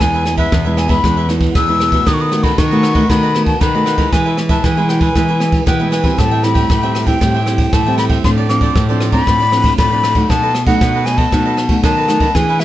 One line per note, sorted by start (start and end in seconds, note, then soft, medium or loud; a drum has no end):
0.00 0.45 E2 medium
0.00 0.50 E3 medium
0.00 0.23 G#3 soft
0.00 0.23 B3 medium
0.00 0.13 E4 soft
0.00 0.23 E4 medium
0.00 0.13 G#4 soft
0.00 0.13 B4 soft
0.00 0.12 E5 soft
0.00 0.38 G#5 medium
0.00 kick medium
0.00 cross-stick medium
0.00 ride soft
0.14 0.24 G#4 medium
0.14 0.24 B4 medium
0.14 0.25 E5 medium
0.25 0.51 G#3 soft
0.25 0.51 B3 medium
0.25 0.51 E4 medium
0.25 muted cavaquinho stroke soft
0.25 cross-stick medium
0.25 ride soft
0.37 0.51 G#4 medium
0.37 0.51 B4 medium
0.37 0.50 E5 medium
0.37 0.80 E5 medium
0.37 kick medium
0.37 ride soft
0.52 0.96 E2 medium
0.52 1.02 B2 soft
0.52 0.64 E4 soft
0.52 0.64 G#4 medium
0.52 0.64 B4 soft
0.52 0.63 E5 soft
0.52 kick medium
0.52 cross-stick medium
0.52 ride soft
0.65 0.87 G#3 medium
0.65 0.88 B3 medium
0.65 0.88 E4 medium
0.65 0.89 G#4 medium
0.65 0.88 B4 medium
0.65 0.87 E5 medium
0.77 0.92 G#5 medium
0.77 cross-stick medium
0.77 ride medium
0.88 0.99 G#3 medium
0.88 0.99 B3 medium
0.88 0.99 E4 medium
0.88 1.02 G#4 soft
0.88 1.02 B4 medium
0.88 1.01 E5 medium
0.88 1.28 B5 medium
0.88 kick medium
0.88 ride soft
1.03 1.48 E2 medium
1.03 1.53 E3 medium
1.03 1.26 G#3 medium
1.03 1.26 B3 medium
1.03 1.16 E4 soft
1.03 1.26 E4 medium
1.03 1.16 G#4 soft
1.03 1.16 B4 medium
1.03 1.16 E5 medium
1.03 kick medium
1.03 cross-stick medium
1.03 ride soft
1.17 1.28 G#4 medium
1.17 1.28 B4 medium
1.17 1.29 E5 medium
1.29 1.53 G#3 medium
1.29 1.54 B3 medium
1.29 1.54 E4 medium
1.29 muted cavaquinho stroke soft
1.29 cross-stick medium
1.29 ride soft
1.41 kick medium
1.41 ride soft
1.55 1.99 E2 medium
1.55 2.04 B2 soft
1.55 1.67 E4 medium
1.55 1.68 G#4 medium
1.55 1.68 B4 medium
1.55 1.67 E5 medium
1.55 2.09 E6 loud
1.55 kick medium
1.55 cross-stick medium
1.55 ride soft
1.68 1.90 G#3 medium
1.68 1.90 B3 medium
1.68 1.91 E4 medium
1.68 1.80 G#4 soft
1.68 1.81 B4 medium
1.68 1.80 E5 medium
1.80 1.93 E4 soft
1.80 1.93 G#4 soft
1.80 1.92 B4 soft
1.80 1.91 E5 soft
1.80 cross-stick medium
1.80 ride soft
1.92 2.28 A3 medium
1.92 2.28 B3 medium
1.92 2.29 F#4 medium
1.92 2.06 G#4 soft
1.92 2.06 B4 medium
1.92 2.05 E5 medium
1.92 kick medium
1.92 ride soft
2.06 2.56 D#3 medium
2.06 2.19 D#4 soft
2.06 2.19 A4 soft
2.06 2.19 B4 soft
2.06 2.19 D#5 soft
2.06 2.15 D#6 loud
2.06 kick medium
2.06 cross-stick medium
2.06 ride soft
2.14 2.23 C#6 medium
2.20 2.31 A4 medium
2.20 2.31 B4 medium
2.20 2.31 D#5 medium
2.20 2.45 D#6 loud
2.31 2.67 A3 medium
2.31 2.67 B3 medium
2.31 2.67 F#4 medium
2.31 muted cavaquinho stroke soft
2.31 cross-stick medium
2.31 ride soft
2.43 2.57 A4 medium
2.43 2.57 B4 medium
2.43 2.56 D#5 medium
2.43 2.60 B5 medium
2.43 kick medium
2.43 ride soft
2.58 3.08 D#3 soft
2.58 2.70 D#4 soft
2.58 2.70 A4 soft
2.58 2.71 B4 soft
2.58 2.70 D#5 medium
2.58 3.11 C#6 medium
2.58 kick medium
2.58 cross-stick medium
2.58 ride soft
2.71 2.93 A3 medium
2.71 2.93 B3 medium
2.71 2.94 F#4 medium
2.71 2.95 A4 medium
2.71 2.94 B4 medium
2.71 2.93 D#5 medium
2.83 cross-stick medium
2.83 ride medium
2.94 3.05 A3 medium
2.94 3.05 B3 medium
2.94 3.05 F#4 medium
2.94 3.08 A4 soft
2.94 3.08 B4 medium
2.94 3.07 D#5 medium
2.94 kick medium
2.94 ride soft
3.09 3.59 D#3 medium
3.09 3.32 A3 medium
3.09 3.32 B3 medium
3.09 3.21 D#4 medium
3.09 3.32 F#4 medium
3.09 3.22 A4 soft
3.09 3.22 B4 medium
3.09 3.22 D#5 medium
3.09 3.45 B5 medium
3.09 kick medium
3.09 cross-stick medium
3.09 ride soft
3.23 3.33 A4 medium
3.23 3.34 B4 medium
3.23 3.34 D#5 medium
3.34 3.60 A3 medium
3.34 3.60 B3 medium
3.34 3.60 F#4 medium
3.34 muted cavaquinho stroke soft
3.34 cross-stick medium
3.34 ride soft
3.46 3.62 A5 medium
3.46 kick medium
3.46 ride soft
3.61 4.11 D#3 medium
3.61 3.73 D#4 medium
3.61 3.73 A4 medium
3.61 3.74 B4 medium
3.61 3.73 D#5 medium
3.61 4.14 B5 loud
3.61 kick medium
3.61 cross-stick medium
3.61 ride soft
3.75 3.96 A3 medium
3.75 3.96 B3 medium
3.75 3.96 F#4 medium
3.75 3.85 A4 medium
3.75 3.85 B4 medium
3.75 3.86 D#5 medium
3.85 3.98 D#4 medium
3.85 3.98 A4 soft
3.85 3.97 B4 soft
3.85 3.96 D#5 medium
3.85 cross-stick medium
3.85 ride soft
3.98 4.33 G#3 medium
3.98 4.34 B3 medium
3.98 4.34 E4 medium
3.98 4.11 A4 soft
3.98 4.11 B4 medium
3.98 4.11 D#5 medium
3.98 kick medium
3.98 ride soft
4.12 4.62 E3 medium
4.12 4.24 E4 soft
4.12 4.25 G#4 soft
4.12 4.25 B4 medium
4.12 4.24 E5 medium
4.12 4.38 G#5 medium
4.12 kick medium
4.12 cross-stick medium
4.12 ride soft
4.26 4.36 G#4 medium
4.26 4.36 B4 medium
4.26 4.37 E5 medium
4.37 4.73 G#3 soft
4.37 4.73 B3 medium
4.37 4.73 E4 medium
4.37 muted cavaquinho stroke soft
4.37 cross-stick medium
4.37 ride soft
4.49 4.63 G#4 medium
4.49 4.63 B4 medium
4.49 4.62 E5 medium
4.49 4.66 A5 medium
4.49 kick medium
4.49 ride soft
4.64 5.13 B2 medium
4.64 5.08 E3 loud
4.64 4.76 E4 soft
4.64 4.76 G#4 medium
4.64 4.77 B4 medium
4.64 4.76 E5 medium
4.64 4.91 G#5 medium
4.64 kick medium
4.64 cross-stick medium
4.64 ride soft
4.77 5.12 G#3 medium
4.77 5.12 B3 medium
4.77 5.12 E4 medium
4.77 5.01 G#4 medium
4.77 5.01 B4 medium
4.77 4.99 E5 medium
4.89 5.02 G5 medium
4.89 cross-stick medium
4.89 ride soft
5.00 5.15 G#4 soft
5.00 5.14 B4 medium
5.00 5.14 E5 medium
5.00 5.66 G#5 medium
5.00 kick medium
5.00 ride soft
5.15 5.65 E3 medium
5.15 5.37 G#3 medium
5.15 5.38 B3 medium
5.15 5.27 E4 medium
5.15 5.38 E4 medium
5.15 5.28 G#4 medium
5.15 5.28 B4 medium
5.15 5.27 E5 medium
5.15 kick medium
5.15 cross-stick medium
5.15 ride soft
5.28 5.40 G#4 medium
5.28 5.40 B4 medium
5.28 5.40 E5 medium
5.40 5.65 G#3 medium
5.40 5.65 B3 medium
5.40 5.65 E4 medium
5.40 muted cavaquinho stroke soft
5.40 cross-stick medium
5.40 ride soft
5.52 kick medium
5.52 ride soft
5.66 6.16 B2 medium
5.66 6.11 E3 medium
5.66 5.78 E4 medium
5.66 5.79 G#4 medium
5.66 5.79 B4 medium
5.66 5.78 E5 medium
5.66 5.91 G5 medium
5.66 kick medium
5.66 cross-stick medium
5.66 ride soft
5.79 6.02 G#3 medium
5.79 6.02 B3 medium
5.79 6.02 E4 medium
5.79 5.90 G#4 medium
5.79 5.91 B4 medium
5.79 5.92 E5 medium
5.91 6.04 E4 soft
5.91 6.03 G#4 soft
5.91 6.02 B4 medium
5.91 6.01 E5 medium
5.91 6.19 G#5 medium
5.91 cross-stick medium
5.91 ride soft
6.03 6.39 G3 medium
6.03 6.40 C4 medium
6.03 6.40 E4 medium
6.03 6.17 G#4 soft
6.03 6.17 B4 medium
6.03 6.16 E5 medium
6.03 kick medium
6.03 ride soft
6.18 6.68 A2 soft
6.18 6.30 A4 soft
6.18 6.30 C5 soft
6.18 6.31 E5 soft
6.18 6.30 G5 soft
6.18 6.45 A5 medium
6.18 kick medium
6.18 cross-stick medium
6.18 ride soft
6.31 6.42 C5 medium
6.31 6.43 E5 medium
6.31 6.43 G5 medium
6.43 6.68 G3 soft
6.43 6.68 C4 soft
6.43 6.69 E4 medium
6.43 7.08 B5 medium
6.43 muted cavaquinho stroke soft
6.43 cross-stick medium
6.43 ride soft
6.54 6.69 C5 medium
6.54 6.68 E5 medium
6.54 6.68 G5 medium
6.54 kick medium
6.54 ride soft
6.69 7.14 A2 medium
6.69 7.19 E3 medium
6.69 6.81 A4 soft
6.69 6.82 C5 soft
6.69 6.82 E5 soft
6.69 6.81 G5 medium
6.69 kick medium
6.69 cross-stick medium
6.69 ride soft
6.83 7.05 G3 medium
6.83 7.05 C4 medium
6.83 7.05 E4 medium
6.83 7.07 C5 medium
6.83 7.06 E5 medium
6.83 7.05 G5 medium
6.95 cross-stick medium
6.95 ride medium
7.06 7.17 G3 medium
7.06 7.17 C4 medium
7.06 7.17 E4 medium
7.06 7.20 C5 soft
7.06 7.20 E5 medium
7.06 7.19 G5 medium
7.06 7.75 G5 medium
7.06 kick medium
7.06 ride soft
7.21 7.71 A2 medium
7.21 7.37 G3 medium
7.21 7.37 C4 medium
7.21 7.38 E4 medium
7.21 7.33 A4 soft
7.21 7.33 C5 medium
7.21 7.33 E5 medium
7.21 7.33 G5 medium
7.21 kick medium
7.21 cross-stick medium
7.21 ride soft
7.34 7.46 C5 medium
7.34 7.46 E5 medium
7.34 7.46 G5 medium
7.46 7.71 G3 medium
7.46 7.71 C4 medium
7.46 7.72 E4 medium
7.46 muted cavaquinho stroke soft
7.46 cross-stick medium
7.46 ride soft
7.58 kick medium
7.58 ride soft
7.73 8.17 A2 medium
7.73 8.22 E3 medium
7.73 7.85 A4 medium
7.73 7.85 C5 medium
7.73 7.85 E5 medium
7.73 7.85 G5 medium
7.73 7.98 A5 medium
7.73 kick medium
7.73 cross-stick medium
7.73 ride medium
7.86 8.21 G3 medium
7.86 8.21 C4 medium
7.86 8.21 E4 medium
7.86 7.97 C5 medium
7.86 7.98 E5 medium
7.86 7.98 G5 medium
7.98 8.10 A4 medium
7.98 8.10 C5 medium
7.98 8.09 E5 medium
7.98 8.08 G5 medium
7.98 8.04 B5 medium
7.98 cross-stick medium
7.98 ride soft
8.10 8.23 C5 soft
8.10 8.23 E5 medium
8.10 8.22 G5 medium
8.10 kick medium
8.10 ride soft
8.24 8.73 A2 medium
8.24 8.46 F3 medium
8.24 8.46 C4 soft
8.24 8.47 D4 medium
8.24 8.36 F4 soft
8.24 8.36 A4 soft
8.24 8.37 C5 soft
8.24 8.36 D5 medium
8.24 8.30 C6 medium
8.24 kick medium
8.24 cross-stick medium
8.24 ride medium
8.38 8.48 A4 medium
8.38 8.49 C5 medium
8.38 8.49 D5 medium
8.49 8.74 F3 medium
8.49 8.74 C4 medium
8.49 8.74 D4 medium
8.49 8.84 D6 medium
8.49 muted cavaquinho stroke soft
8.49 cross-stick medium
8.49 ride soft
8.61 8.75 A4 medium
8.61 8.75 C5 medium
8.61 8.74 D5 medium
8.61 kick medium
8.61 ride soft
8.76 9.25 A2 soft
8.76 8.87 F4 soft
8.76 8.88 A4 soft
8.76 8.88 C5 medium
8.76 8.88 D5 soft
8.76 kick medium
8.76 cross-stick medium
8.76 ride soft
8.89 9.11 F3 medium
8.89 9.11 C4 medium
8.89 9.11 D4 medium
8.89 9.13 A4 medium
8.89 9.12 C5 medium
8.89 9.11 D5 medium
9.00 cross-stick medium
9.00 ride soft
9.12 9.23 F3 medium
9.12 9.23 C4 medium
9.12 9.23 D4 medium
9.12 9.26 A4 soft
9.12 9.26 C5 medium
9.12 9.25 D5 medium
9.12 9.73 B5 loud
9.12 kick medium
9.12 ride soft
9.27 9.76 A2 medium
9.27 9.42 F3 medium
9.27 9.43 C4 soft
9.27 9.43 D4 medium
9.27 9.39 F4 soft
9.27 9.39 A4 medium
9.27 9.39 C5 medium
9.27 9.39 D5 medium
9.27 kick medium
9.27 cross-stick medium
9.27 ride soft
9.40 9.51 A4 medium
9.40 9.52 C5 medium
9.40 9.52 D5 medium
9.52 9.87 F3 medium
9.52 9.87 C4 medium
9.52 9.87 D4 medium
9.52 muted cavaquinho stroke soft
9.52 cross-stick medium
9.52 ride soft
9.64 kick medium
9.64 ride soft
9.78 10.27 A2 medium
9.78 9.90 F4 medium
9.78 9.90 A4 medium
9.78 9.91 C5 medium
9.78 9.91 D5 medium
9.78 10.31 B5 loud
9.78 kick medium
9.78 cross-stick medium
9.78 ride soft
9.92 10.13 F3 medium
9.92 10.13 C4 medium
9.92 10.14 D4 medium
9.92 10.03 A4 soft
9.92 10.03 C5 medium
9.92 10.04 D5 medium
10.03 10.15 F4 medium
10.03 10.16 A4 medium
10.03 10.15 C5 soft
10.03 10.13 D5 medium
10.03 cross-stick medium
10.03 ride soft
10.15 10.51 F#3 medium
10.15 10.51 A3 medium
10.15 10.51 D#4 medium
10.15 10.29 A4 medium
10.15 10.28 C5 medium
10.15 10.28 D5 medium
10.15 kick medium
10.15 ride soft
10.29 10.79 B2 soft
10.29 10.41 D#4 soft
10.29 10.42 A4 soft
10.29 10.42 B4 soft
10.29 10.41 D#5 soft
10.29 10.66 A5 loud
10.29 kick medium
10.29 cross-stick medium
10.29 ride soft
10.42 10.54 A4 medium
10.42 10.54 B4 medium
10.42 10.54 D#5 medium
10.54 muted cavaquinho stroke soft
10.54 cross-stick medium
10.54 ride soft
10.66 11.02 F#3 medium
10.66 11.02 A3 medium
10.66 11.02 D#4 medium
10.66 10.80 A4 medium
10.66 10.80 B4 medium
10.66 10.79 D#5 medium
10.66 11.07 F#5 medium
10.66 kick medium
10.66 ride soft
10.81 11.30 F#2 medium
10.81 11.25 B2 loud
10.81 10.93 D#4 soft
10.81 10.93 A4 soft
10.81 10.94 B4 medium
10.81 10.93 D#5 medium
10.81 kick medium
10.81 cross-stick medium
10.81 ride soft
10.95 11.18 A4 medium
10.95 11.18 B4 medium
10.95 11.17 D#5 medium
11.06 11.22 F#3 medium
11.06 11.22 A3 soft
11.06 11.22 D#4 medium
11.06 11.19 G#5 medium
11.06 cross-stick medium
11.06 ride medium
11.18 11.31 A4 soft
11.18 11.31 B4 medium
11.18 11.31 D#5 medium
11.18 11.83 A5 medium
11.18 kick medium
11.18 ride soft
11.32 11.82 B2 medium
11.32 11.67 F#3 medium
11.32 11.67 A3 medium
11.32 11.44 D#4 soft
11.32 11.68 D#4 medium
11.32 11.45 A4 medium
11.32 11.45 B4 medium
11.32 11.44 D#5 medium
11.32 kick medium
11.32 cross-stick medium
11.32 ride soft
11.46 11.56 A4 medium
11.46 11.57 B4 medium
11.46 11.57 D#5 medium
11.57 muted cavaquinho stroke soft
11.57 cross-stick medium
11.57 ride soft
11.69 12.04 F#3 medium
11.69 12.05 A3 medium
11.69 12.05 D#4 medium
11.69 kick medium
11.69 ride medium
11.83 12.32 F#2 medium
11.83 12.27 D#3 medium
11.83 11.95 D#4 medium
11.83 11.96 A4 medium
11.83 11.96 B4 medium
11.83 11.96 D#5 medium
11.83 12.36 A5 loud
11.83 kick medium
11.83 cross-stick medium
11.83 ride soft
11.97 12.08 A4 medium
11.97 12.09 B4 medium
11.97 12.09 D#5 medium
12.08 12.24 F#3 medium
12.08 12.24 A3 medium
12.08 12.21 D#4 soft
12.08 12.24 D#4 medium
12.08 12.21 A4 medium
12.08 12.20 B4 medium
12.08 12.20 D#5 medium
12.08 cross-stick medium
12.08 ride soft
12.20 12.34 A4 medium
12.20 12.34 B4 medium
12.20 12.33 D#5 medium
12.20 kick medium
12.20 ride soft
12.35 12.65 E3 soft
12.35 12.65 B3 soft
12.35 12.47 D4 soft
12.35 12.65 D4 medium
12.35 12.47 G#4 soft
12.35 12.65 G#4 medium
12.35 12.48 B4 soft
12.35 12.47 E5 soft
12.35 12.61 G#5 medium
12.35 kick medium
12.35 cross-stick medium
12.35 ride soft
12.49 12.60 G#4 soft
12.49 12.60 B4 medium
12.49 12.60 E5 medium
12.60 12.65 E5 medium
12.60 muted cavaquinho stroke soft
12.60 cross-stick medium
12.60 ride soft